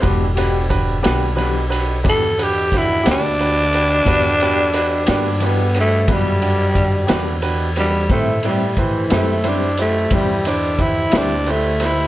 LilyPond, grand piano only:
\new Staff \with { instrumentName = "Grand piano" } { \time 12/8 \key e \minor \tempo 4. = 60 <d' fis' g' b'>8 <d' fis' g' b'>8 <d' fis' g' b'>8 <d' fis' g' b'>8 <d' fis' g' b'>8 <d' fis' g' b'>8 <d' fis' g' b'>8 <d' fis' g' b'>8 <d' fis' g' b'>8 <d' fis' g' b'>8 <d' fis' g' b'>8 <d' fis' g' b'>8 | <d' fis' g' b'>8 <d' fis' g' b'>8 <d' fis' g' b'>8 <d' fis' g' b'>8 <d' fis' g' b'>8 <d' fis' g' b'>8 <d' fis' g' b'>8 <d' fis' g' d''>8 <d' fis' g' d''>8 <d' fis' g' b'>8 <d' fis' g' b'>8 <d' fis' g' b'>8 | <e' g' b' c''>8 <e' g' b' d''>8 <e' g' b' c''>8 <e' g' b' c''>8 <e' g' b' c''>8 <e' g' b' c''>8 <e' g' b' c''>8 <e' g' b' c''>8 <e' g' b' c''>8 <e' g' b' c''>8 <e' g' b' c''>8 <e' g' b' c''>8 | }